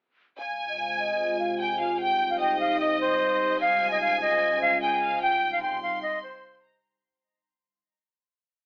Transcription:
0.39 C3 G#3 F4 C5 F5 G#5
0.69 D#5
0.79 F5
0.99 D#5
1.39 F5
1.59 G5 G#5
1.80 F5
2.00 G3 D#4 C5 G5
2.30 F5
2.40 D#5 G5
2.60 F5
2.80 D#5
3.01 C5
3.61 C#3 G#3 F4 F5 G#5
3.91 D#5
4.01 F5
4.21 D#5
4.62 F5
4.82 G5 G#5
5.02 F5
5.22 C3 G3 D#4 G5
5.52 F5
5.62 G5 C6
5.82 F5
6.02 D#5
6.23 C5
6.63 A#5

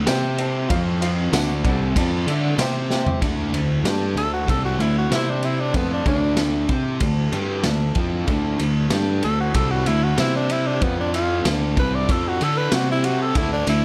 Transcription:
0.07 C3 C4 G4 C5 G5, snare, ride, tambourine
0.38 G4 C5 A5, ride
0.69 F2 F3 C4 F4 C5 F5, kick, ride
1.00 F4 C5 F5, ride
1.32 D2 D3 A3 D4 A4 D5 F#5, snare, ride, tambourine
1.64 C2 C3 G3 C4 A4 D5 F#5, kick, ride
1.96 F2 F3 C4 F4 A4 D5 A5, kick, ride
2.27 D3 D4 A4 D5 E5, ride
2.58 C3 C4 G4 C5 G5, snare, ride, tambourine
2.90 G4 C5 G5, snare
3.06 floor tom
3.21 D2 D3 A3 D4 F#4 A4, kick, ride
3.53 D2 D3 A3 D4 F#4 A4, ride
3.83 G2 D3 G3 A3 D4 G4 A4, snare, ride
4.15 D2 D3 A3 D4 F#4 A4, ride
4.34 F#4
4.47 C2 C3 G3 A3 C4 D4 F#4 A4, kick, ride
4.65 F#4
4.78 D2 D3 A3 E4 F#4 A4, ride
4.83 D4
4.98 F#4
5.11 C3 G3 C4 E4 G4 C5, snare, ride
5.30 D4
5.42 G3 C4 E4 G4, ride
5.60 D4
5.74 F2 D3 F3 A3 B3 C4 D4 F4 A4, kick, ride
5.93 D4
6.06 D2 D3 A3 D4 F#4 A4, kick, ride
6.36 D3 A3 D4 F#4 A4, snare, ride
6.69 C3 C4 D4 G4 A4 C5, kick, ride
7.00 D2 D3 A3 D4 F#4 A4, kick, ride
7.32 G2 G3 D4 G4 A4, ride
7.63 D2 D3 A3 D4 F#4 A4, snare, ride
7.95 F2 F3 C4 D4 F4 A4, kick, ride
8.27 D2 D3 A3 D4 F#4 A4, kick, ride
8.58 D2 D3 A3 F#4 A4, ride
8.88 G2 D3 G3 A3 D4 A4, snare, ride
8.93 G4
9.21 D2 D3 A3 D4 F#4 A4, ride
9.40 F#4
9.53 C2 C3 G3 A3 C4 D4 F#4 A4, kick, ride
9.71 F#4
9.85 D2 D3 A3 D4 E4 F#4 A4, ride
10.04 F#4
10.17 C3 G3 C4 E4 G4 C5, snare, ride
10.36 D4
10.48 G3 C4 E4 G4, ride
10.67 D4
10.81 F2 F3 B3 C4 F4 C5, kick, ride
11.00 D4
11.13 C4 F4 C5, ride
11.44 D2 D3 A3 D4 F#4 A4, snare, ride
11.76 C2 C3 G3 C4 D4 F#4 A4 B4, kick, ride
11.95 D5
12.08 F2 F3 A3 C4 D4 F4 A4, kick, ride
12.28 F#4
12.40 D3 D4 F#4 A4 D5, ride
12.57 B4
12.72 C3 G3 C4 F#4 G4 C5, snare, ride
12.92 E4
13.03 G3 C4 F#4 G4, ride
13.22 A4
13.35 D2 D3 A3 D4 E4 F#4 A4, kick, ride
13.53 D4
13.67 D2 D3 A3 D4 E4 F#4, ride, tambourine

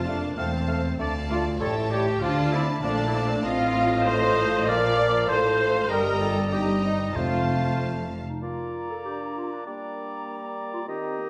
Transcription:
Already playing: F1 F2 C5 F5 A5
0.06 A3 A#3 D4 D5 F5
0.37 E1 E2 A3 C4 C5 F5 A5
0.68 A3 F5
0.98 D2 A3 D5 F5 A5
1.30 A3 D4 F4 D5 F5
1.60 A1 A2 G3 E4 A4 C#5 G5 A5
1.90 G3 E4 G4 C#5 G5
2.21 D2 D3 F3 D4 F4 D5 F5 A5
2.52 F3 C4 E4 D5 E5
2.81 A#1 A#2 F3 A3 D4 D5 F5 A5
3.08 E4
3.14 F3 D4 D5
3.25 C4
3.34 D4
3.43 A1 A2 F3 C4 F4 D#5 F5
4.06 A4 C5 D#5 F5 C6
4.61 D#5
4.67 A#1 A#2 A#4 D5 F5 D6
5.28 A1 A2 A4 C5 F5 C6
5.89 G1 G2 G3 G4 A#4 D#5 G5 A#5
6.20 F4 A4 A5
6.51 G3 D#4 G4 D#5 G5 A#5
6.82 C4 D#4 D#5
7.14 F1 F2 A3 C4 F4 C5 F5 A5
8.27 D#4
8.42 A#3 F4 D5 A#5
8.90 A4
9.05 D4 G4
9.37 F4
9.52 D4
9.67 G3 A#3 D5 A#5
10.73 F4
10.87 D#3 C4 G4 D#5 A#5
11.18 A#3

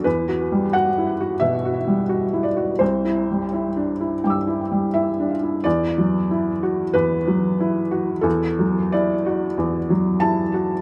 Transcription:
0.04 E2 B4
0.28 F#4
0.52 G3
0.73 F#4 F#5
0.98 E4
1.20 F#4
1.40 B2 E5
1.65 F#4
1.87 G3
2.09 F#4
2.33 E4
2.43 D5
2.57 F#4
2.79 C2 C5
3.05 E4
3.31 G3
3.53 E4
3.76 D4
4.01 E4
4.24 G2 G5 D6
4.30 E6
4.47 E4
4.72 G3
4.94 E4 E5
5.20 D4
5.43 E4
5.64 E2 D5
5.98 F#3
6.31 E4
6.63 F#4
6.93 E2 B4
7.28 F#3
7.60 E4
7.91 F#4
8.21 E2 A4
8.59 F#3
8.92 E4 D5
9.26 F#4
9.58 E2
9.90 F#3
10.20 E4 A5
10.54 F#4

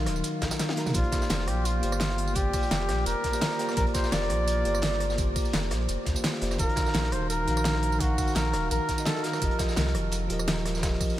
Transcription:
Already playing: D#3 F#3 D#4 A#4 F5
0.06 D#1, cross-stick, snare, closed hi-hat, open hi-hat
0.16 tambourine
0.24 closed hi-hat, tambourine
0.42 A#1, kick, snare, closed hi-hat, tambourine
0.51 snare, closed hi-hat, tambourine
0.59 snare, closed hi-hat, tambourine
0.69 snare, closed hi-hat, high tom
0.75 D#3 D#4 F#4 A#4 A#5, snare, closed hi-hat, open hi-hat
0.86 snare, mid tom, tambourine
0.92 A#1 A#3 F4 G4, kick, closed hi-hat, tambourine
0.96 C5 D5
1.04 closed hi-hat
1.12 kick, cross-stick, snare, closed hi-hat, tambourine
1.22 snare, tambourine
1.29 F1, snare, closed hi-hat, tambourine
1.39 snare
1.47 A#1 G4, cross-stick, closed hi-hat, open hi-hat
1.65 F4, closed hi-hat, tambourine
1.80 G1 A#3 F4 G4, closed hi-hat, tambourine
1.85 C5 D5
1.92 cross-stick, tambourine
2.00 snare, closed hi-hat, tambourine
2.10 snare
2.18 open hi-hat
2.27 tambourine
2.33 A#3 F4 G4, kick, closed hi-hat, tambourine
2.38 C5 D5
2.53 kick, cross-stick, closed hi-hat, open hi-hat, tambourine
2.63 tambourine
2.71 F1, snare, closed hi-hat, tambourine
2.89 A#1, cross-stick, snare, closed hi-hat, open hi-hat
3.06 F1 A#4, closed hi-hat, tambourine
3.24 kick, snare, closed hi-hat, tambourine
3.32 A#3 F4 G4 C5 D5, closed hi-hat, tambourine
3.41 snare, closed hi-hat, tambourine
3.51 snare
3.58 A#3 F4 G4 C5 D5, snare, closed hi-hat, open hi-hat
3.69 cross-stick, snare, tambourine
3.74 A#1 A#3 F4 G4 A#4, kick, closed hi-hat, tambourine
3.79 C5 D5
3.87 closed hi-hat
3.94 C5, kick, cross-stick, snare, closed hi-hat, tambourine
4.04 snare, tambourine
4.12 F1 D5, snare, closed hi-hat, tambourine
4.22 snare
4.30 A#1, cross-stick, closed hi-hat, open hi-hat
4.48 closed hi-hat, tambourine
4.62 G1 A#3 F4 G4, closed hi-hat, tambourine
4.67 C5 D5
4.75 cross-stick, tambourine
4.82 snare, closed hi-hat, tambourine
4.92 snare
5.00 cross-stick, closed hi-hat, open hi-hat
5.10 snare, tambourine
5.15 A#3 F4 G4, kick, closed hi-hat, tambourine
5.20 C5 D5
5.36 kick, cross-stick, closed hi-hat, open hi-hat, tambourine
5.45 tambourine
5.53 F1, snare, closed hi-hat, tambourine
5.71 A#1, cross-stick, snare, closed hi-hat, open hi-hat
5.88 F1, closed hi-hat, tambourine
6.05 D2, kick, snare, closed hi-hat, tambourine
6.14 A#3 F4 G4 C5 D5, closed hi-hat, tambourine
6.24 snare, closed hi-hat, tambourine
6.33 snare
6.40 F1 A#3 F4 G4 C5 D5, snare, closed hi-hat, open hi-hat
6.51 cross-stick, snare, tambourine
6.56 D#1 D#3 D#4 F#4 A#4, kick, closed hi-hat, tambourine
6.61 A#4 F5
6.69 closed hi-hat
6.76 kick, cross-stick, snare, closed hi-hat, tambourine
6.86 snare, tambourine
6.94 A#1, snare, closed hi-hat, tambourine
7.03 snare
7.12 D#1 C5, cross-stick, closed hi-hat, open hi-hat
7.30 A#4, closed hi-hat, tambourine
7.44 A#1 D#3 D#4 F#4, closed hi-hat, tambourine
7.49 A#4 F5
7.57 cross-stick, tambourine
7.64 snare, closed hi-hat, tambourine
7.75 snare
7.83 open hi-hat
7.92 tambourine
7.97 D#3 D#4 F#4, kick, closed hi-hat, tambourine
8.02 A#4 F5
8.18 kick, cross-stick, closed hi-hat, open hi-hat, tambourine
8.28 tambourine
8.35 A#1 A#4, snare, closed hi-hat, tambourine
8.53 D#1, cross-stick, snare, closed hi-hat, open hi-hat
8.71 A#1 A#4, closed hi-hat, tambourine
8.88 kick, snare, closed hi-hat, tambourine
8.96 D#3 D#4 F#4 A#4 D#5, closed hi-hat, tambourine
9.05 A4, snare, closed hi-hat, tambourine
9.15 snare
9.23 D#3 D#4 F#4 A#4 F5, snare, closed hi-hat, open hi-hat
9.33 cross-stick, snare, tambourine
9.39 F1 F3 F4 G4, kick, closed hi-hat, tambourine
9.44 A#4 D#5
9.51 closed hi-hat
9.59 kick, cross-stick, snare, closed hi-hat, tambourine
9.69 snare, tambourine
9.76 C2, snare, closed hi-hat, tambourine
9.87 snare
9.95 F1, cross-stick, closed hi-hat, open hi-hat
10.12 closed hi-hat, tambourine
10.27 D#1 F3 F4 G4, closed hi-hat, tambourine
10.32 A#4 D#5
10.39 cross-stick, tambourine
10.48 snare, closed hi-hat, tambourine
10.56 snare
10.65 cross-stick, snare, closed hi-hat, open hi-hat
10.75 snare, tambourine
10.80 F3 F4 G4, kick, snare, closed hi-hat, tambourine
10.84 A#4 D#5
10.93 snare
11.01 kick, cross-stick, closed hi-hat, open hi-hat, tambourine
11.10 tambourine

